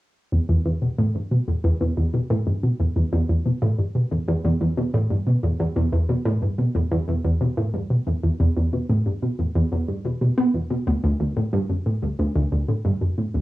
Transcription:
0.32 E2
0.49 E2
0.65 E2
0.82 B2
0.98 A2
1.15 G2
1.31 B2
1.48 E2
1.64 E2
1.81 E2
1.97 E2
2.14 B2
2.30 A2
2.47 G2
2.63 B2
2.80 E2
2.96 E2
3.13 E2
3.29 E2
3.46 B2
3.62 A2
3.79 G2
3.95 B2
4.12 E2
4.28 E2
4.45 E2
4.61 E2
4.77 B2
4.94 A2
5.10 G2
5.27 B2
5.43 E2
5.60 E2
5.76 E2
5.93 E2
6.09 B2
6.25 A2
6.42 G2
6.58 B2
6.75 E2
6.91 E2
7.08 E2
7.24 E2
7.41 B2
7.57 A2
7.74 G2
7.90 B2
8.07 E2
8.23 E2
8.40 E2
8.57 E2
8.73 B2
8.89 A2
9.06 G2
9.22 B2
9.39 E2
9.55 E2
9.72 E2
9.88 G2
10.05 B2
10.21 B2
10.38 B3
10.54 E2
10.70 B2
10.87 D2
11.04 D2
11.20 D2
11.37 A2
11.53 G2
11.70 F#2
11.86 A2
12.03 D2
12.19 D2
12.36 D2
12.52 D2
12.68 A2
12.85 G2
13.01 F#2
13.18 A2
13.34 D2

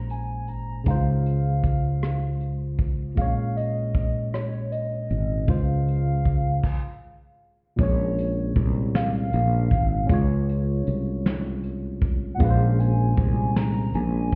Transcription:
Already playing: A#1 A#2 G#3 C#4 C5
0.09 G#5, closed hi-hat
0.47 G#1 A#5, closed hi-hat
0.84 C#2 C#3 G#3 F5, kick, closed hi-hat
0.89 D#4 C5
0.95 F4
1.26 closed hi-hat
1.64 kick, closed hi-hat
2.03 cross-stick, closed hi-hat
2.41 closed hi-hat
2.79 kick, closed hi-hat
3.15 A#1 A#2 G#3 F5, kick, closed hi-hat
3.19 C4 C#5
3.26 C#4
3.57 D#5, closed hi-hat
3.95 kick, closed hi-hat
4.34 C#5, cross-stick, closed hi-hat
4.72 D#5, closed hi-hat
5.10 G#1, closed hi-hat
5.47 C#2 C#3 G#3 F4 C5 F5, kick, closed hi-hat
5.88 closed hi-hat
6.25 kick, closed hi-hat
6.64 kick, crash
7.76 A#1 A#2 G#3 C#5, kick, closed hi-hat
7.81 C#4 C#5
8.18 closed hi-hat
8.55 C2, kick, closed hi-hat
8.95 F5, snare, closed hi-hat
9.33 A#1, closed hi-hat
9.71 G#1, kick, closed hi-hat
10.07 C#2 G#3 C#4, kick, closed hi-hat
10.11 F4 C#5
10.49 closed hi-hat
10.87 C2, closed hi-hat
11.26 snare, closed hi-hat
11.63 closed hi-hat
12.01 kick, closed hi-hat
12.34 A#2 F#5
12.39 A#1 G#3 C#4 F5, kick, closed hi-hat
12.44 B4
12.50 C5
12.79 G#5, closed hi-hat
13.17 C2, kick, closed hi-hat
13.56 A#5, snare, closed hi-hat
13.94 A#1 G#5, closed hi-hat
14.32 closed hi-hat

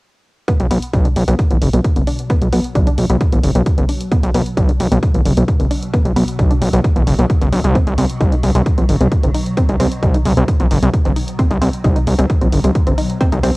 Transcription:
0.48 B2 F#3 B3, kick, closed hi-hat
0.60 B1, closed hi-hat
0.71 B1 B3, open hi-hat
0.82 closed hi-hat
0.94 B1 D4, kick, closed hi-hat
1.05 D4, closed hi-hat
1.16 B1, open hi-hat
1.28 B1 B3, closed hi-hat
1.39 kick, closed hi-hat
1.51 A1 B3, closed hi-hat
1.62 F#1, open hi-hat
1.73 B1 B3, closed hi-hat
1.84 kick, closed hi-hat
1.96 F#1 B3, closed hi-hat
2.07 D4, open hi-hat
2.19 closed hi-hat
2.30 B3, kick, closed hi-hat
2.42 B1, closed hi-hat
2.53 B1 B3, open hi-hat
2.64 closed hi-hat
2.75 B1 D4, kick, closed hi-hat
2.87 D4, closed hi-hat
2.98 B1, open hi-hat
3.10 B1 B3, closed hi-hat
3.21 kick, closed hi-hat
3.32 A1 B3, closed hi-hat
3.43 F#1, open hi-hat
3.55 B1 B3, closed hi-hat
3.66 kick, closed hi-hat
3.78 F#1 B3, closed hi-hat
3.89 D4, open hi-hat
4.01 closed hi-hat
4.12 B3, kick, closed hi-hat
4.23 B1, closed hi-hat
4.34 B1 B3, open hi-hat
4.46 closed hi-hat
4.57 B1 D4, kick, closed hi-hat
4.69 D4, closed hi-hat
4.80 B1, open hi-hat
4.91 B1 B3, closed hi-hat
5.03 kick, closed hi-hat
5.14 A1 B3, closed hi-hat
5.25 F#1, open hi-hat
5.37 B1 B3, closed hi-hat
5.48 kick, closed hi-hat
5.60 F#1 B3, closed hi-hat
5.71 D4, open hi-hat
5.82 closed hi-hat
5.93 B3, kick, closed hi-hat
6.05 B1, closed hi-hat
6.16 B1 B3, open hi-hat
6.28 closed hi-hat
6.39 B1 D4, kick, closed hi-hat
6.50 D4, closed hi-hat
6.62 B1, open hi-hat
6.73 B1 B3, closed hi-hat
6.84 kick, closed hi-hat
6.96 A1 B3, closed hi-hat
7.07 F#1, open hi-hat
7.19 B1 B3, closed hi-hat
7.30 kick, closed hi-hat
7.42 F#1 B3, closed hi-hat
7.53 B1 D4, open hi-hat
7.64 C2, closed hi-hat
7.75 C4, kick, closed hi-hat
7.87 C2 D#4, closed hi-hat
7.98 C2 C4, open hi-hat
8.10 closed hi-hat
8.21 C2 D#4, kick, closed hi-hat
8.32 D#4, closed hi-hat
8.43 C2, open hi-hat
8.55 C2 C4, closed hi-hat
8.66 kick, closed hi-hat
8.78 A#1 C4, closed hi-hat
8.89 G1, open hi-hat
9.01 C2 C4, closed hi-hat
9.12 kick, closed hi-hat
9.23 G1 C4, closed hi-hat
9.34 D#4, open hi-hat
9.46 closed hi-hat
9.57 C4, kick, closed hi-hat
9.69 C2 D#4, closed hi-hat
9.80 C2 C4, open hi-hat
9.92 closed hi-hat
10.03 C2 D#4, kick, closed hi-hat
10.14 D#4, closed hi-hat
10.25 C2, open hi-hat
10.37 C2 C4, closed hi-hat
10.48 kick, closed hi-hat
10.60 A#1 C4, closed hi-hat
10.71 G1, open hi-hat
10.82 C2 C4, closed hi-hat
10.93 kick, closed hi-hat
11.05 G1 C4, closed hi-hat
11.16 D#4, open hi-hat
11.28 closed hi-hat
11.39 C4, kick, closed hi-hat
11.51 C2 D#4, closed hi-hat
11.62 C2 C4, open hi-hat
11.73 closed hi-hat
11.84 C2 D#4, kick, closed hi-hat
11.96 D#4, closed hi-hat
12.07 C2, open hi-hat
12.19 C2 C4, closed hi-hat
12.30 kick, closed hi-hat
12.41 A#1 C4, closed hi-hat
12.53 G1, open hi-hat
12.64 C2 C4, closed hi-hat
12.75 kick, closed hi-hat
12.87 G1 C4, closed hi-hat
12.98 D#4, open hi-hat
13.10 closed hi-hat
13.21 C4, kick, closed hi-hat
13.32 C2 D#4, closed hi-hat
13.43 C2 C4, open hi-hat

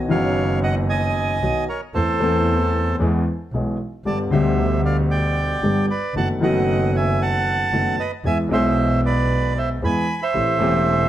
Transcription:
0.09 F#1 F#2 D#3 F#3 B3 F#4 C#5 F5
0.63 D#5 F#5
0.89 D#5 G#5
1.42 B1 B2 D#3 F#3 B3 F#4
1.69 A#4 C#5
1.94 E2 E3 A3 C4 A4 C5
2.20 E2 E3 A3 C4 A4
2.99 E2 E3 G#3 B3 G#4
3.52 B1 B2 E3 G#3 B3 G#4
4.05 G1 G2 D3 G3 B3 G4 D5 A5
4.31 D2 B2 D3 G3 C5 E5
4.35 G4
4.85 D5 F5
5.11 D5 G5
5.62 G1 G2 D3 G3 B3 G4
5.90 B4 D5
6.15 F#1 F#2 D#3 F#3 A3 B3 F#4 F#5 A5
6.40 F#1 F#2 D#3 F#3 A3 B3 D#5 F#5
6.45 F#4
6.96 E5 G#5
7.22 F#5 A5
7.71 F#1 F#2 D#3 F#3 A3 B3 F#4
8.00 B4 D#5
8.24 E2 E3 G#3 B3 G#4 E5 G#5
8.49 B1 B2 E3 G#3 E5
8.53 G#4 C5
9.06 B4 D5
9.58 C5 E5
9.82 E2 E3 G#3 B3 G#4 G#5 B5
10.23 C5 E5
10.34 A1 A2 E3 A3 C4 G4
10.59 E1 E2 E3 A3 C4 G4

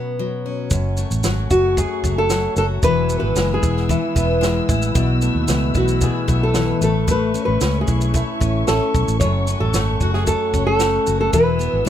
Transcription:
Already playing: B2 F#3 B3 C#4 F#4
0.19 F#3
0.46 C#4
0.69 F#1 F#2 A3 F#5 G#5 C#6, kick, shaker
0.97 A3, shaker
1.11 A1, shaker
1.24 G#1 F#3, snare, shaker
1.51 F#1 F#4, kick, shaker
1.77 F#2 G#4, kick, shaker
2.03 F#1 A3, kick, shaker
2.18 A4
2.30 F#3, snare, shaker
2.56 F#1 F#4 A4, shaker
2.83 E1 E3 B4 G#5 E6, kick, shaker
3.09 B3, shaker
3.20 G#1 B4
3.36 F#1 G#3, snare, shaker
3.54 G#4
3.63 E1 E4, kick, shaker
3.77 snare
3.89 E3 E4, kick, shaker
4.16 E1 B3, kick, shaker
4.41 G#3, snare, shaker
4.69 A1 E4, kick, shaker
4.82 shaker
4.95 B1 B2 E5, kick, shaker
5.22 A3, shaker
5.35 D#2
5.48 C#2 E3, snare, shaker
5.74 B1 E4 F#4, kick, shaker
5.88 shaker
6.01 B2 G#4, kick, shaker
6.28 B1 A3, kick, shaker
6.43 A4
6.54 E3, snare, shaker
6.81 A1 A3 A4 E5 C#6, shaker
7.08 A3 B4, kick, shaker
7.34 C#4, shaker
7.45 A1 B4
7.61 C#2 C#4, snare, shaker
7.81 G#4
7.88 B1 E4, kick, shaker
8.01 shaker
8.14 A3 E4, kick, shaker
8.40 A1 C#4, kick, shaker
8.67 A1 C#4 A4, snare, shaker
8.95 B1 E4, kick, shaker
9.08 A1, shaker
9.20 F#1 F#2 A4 C#5 F#5 G#5, kick, shaker
9.47 C#4, shaker
9.60 A1 A4
9.74 G#1 A3, snare, shaker
10.01 F#1 F#4, kick, shaker
10.14 G#4, snare
10.27 F#2 A4, kick, shaker
10.53 F#1 C#4, kick, shaker
10.67 A4
10.80 A3, snare, shaker
11.06 F#1 F#4, shaker
11.21 A4
11.33 E1 E3 B4 E6, kick, shaker
11.59 B3, shaker
11.73 G#1
11.85 G#3

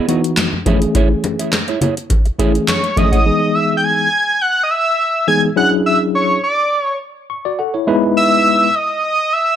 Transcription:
0.08 E3 B3 D#4 E4 F#4 G#4 D#5, closed hi-hat
0.24 closed hi-hat
0.37 snare, clap, closed hi-hat, high conga
0.53 muted clean electric guitar stroke, high conga
0.66 E3 A3 C#4 E4 G#4 C#5 E5, kick, closed hi-hat, high conga
0.82 muted clean electric guitar stroke, closed hi-hat
0.95 E4 G#4 C#5 E5, kick, closed hi-hat, muted conga
1.11 muted clean electric guitar stroke
1.24 muted clean electric guitar stroke, closed hi-hat, muted conga
1.39 E4 G#4 C#5 E5, closed hi-hat
1.53 muted clean electric guitar stroke, snare, clap, closed hi-hat, high conga
1.68 E4 G#4 C#5 E5, closed hi-hat
1.81 E4 G#4 C#5 E5, closed hi-hat, low conga
1.97 muted clean electric guitar stroke, closed hi-hat
2.10 kick, closed hi-hat, muted conga
2.26 muted clean electric guitar stroke, closed hi-hat
2.39 E3 A3 C#4 E4 G#4 C#5 E5, kick, closed hi-hat, muted conga
2.54 muted clean electric guitar stroke, closed hi-hat
2.68 C#6, muted clean electric guitar stroke, snare, clap, closed hi-hat, high conga
2.83 muted clean electric guitar stroke, closed hi-hat
2.96 E3 A3 C#4 E4 G#4 C#5 E5 D#6, kick, closed hi-hat, high conga
3.12 E4 G#4 C#5 F#5, kick, closed hi-hat
3.25 E3 G#3 B3 D#4 G#4
3.55 E6
3.77 G6
3.84 G#6
4.41 F#6
4.63 D#6
4.70 E6
5.27 E3 G#3 B3 D#4 G#4 G#6
5.56 F#3 C#4 D4 E4 G#4 F#6
5.86 E6
6.15 C#6
6.44 D6
6.83 C#6
7.30 C#6
7.45 F#4 D5
7.59 A4 F#5
7.74 E4 C#5
7.87 G#3 B3 D#4 E4 B4
8.17 E6
8.75 D#6
9.04 D#6
9.33 E6

